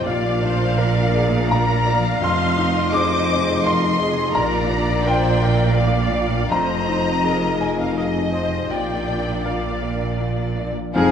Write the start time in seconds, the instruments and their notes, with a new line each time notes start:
Already playing: harp F3 F4
0.06 double bass section A#1, grand piano A#2 F5, harp A#2, cello section A#2, violin section D5 F5, viola section D5
0.30 harp D4
0.43 grand piano D4, viola section C5
0.54 harp F4
0.78 harp D4, viola section A#4, grand piano A#4
1.02 harp A#4
1.14 viola section G#4, grand piano D5
1.27 harp D4
1.50 harp F4, viola section A#4, grand piano F5 A#5, violin section A#5
1.75 harp D4
1.87 grand piano D5, viola section F5
1.99 harp F3
2.21 double bass section F1, grand piano F2 C6, harp F2, cello section F2, violin section D#5 C6
2.46 harp D#4
2.58 grand piano D#4
2.70 harp F4
2.92 harp D#4, grand piano G#4 D6, viola section C5, violin section D6
3.18 harp G#4
3.29 grand piano D#5
3.41 harp D#4
3.64 harp F4, viola section A#4, grand piano F5 C6, violin section C6
3.88 harp D#4
4.00 viola section G#4, grand piano D#5
4.12 harp C3
4.34 double bass section A#1, harp A#2, grand piano A#2 A#5, cello section A#2, viola section A#4, violin section D5 A#5
4.59 harp D4
4.70 grand piano D4, viola section D5
4.83 harp F4
5.05 harp D4, grand piano A#4 G5, viola section C5, violin section G5
5.30 harp A#4
5.42 viola section A#4, grand piano D5
5.54 harp D4
5.76 harp F4, viola section D5, violin section F5, grand piano F5
6.02 harp D4
6.14 grand piano D5
6.28 harp F3
6.51 double bass section F1, grand piano F2 A#5, cello section F2, harp F2, viola section C5, violin section D#5 A#5
6.76 harp D#4
6.88 grand piano D#4
7.00 harp F4
7.24 harp D#4, grand piano G#4, viola section A#4
7.49 harp G#4
7.60 grand piano D#5 G#5, violin section G#5
7.73 harp D#4
7.78 grand piano F5, violin section F5
7.96 harp F4, viola section G#4, violin section D#5, grand piano D#5 F5
8.21 harp D#4
8.33 viola section C5, grand piano D#5
8.46 harp C3
8.71 double bass section A#1, grand piano A#2 G5, cello section A#2, harp A#2, viola section D5, violin section D5 G5
8.96 harp D4
9.08 grand piano D4
9.20 harp F4
9.45 harp D4, grand piano A#4 F5, violin section D5 F5
9.71 harp A#4
9.83 grand piano D5
9.95 harp D4
10.20 harp F4, grand piano F5
10.46 harp D4
10.60 grand piano D5
10.71 harp F3
10.95 double bass section F1, grand piano F2, harp F2, viola section D#3, cello section G#3, french horn section C4, clarinet D#4, violin section G#4 F5, oboe F5, flute G#5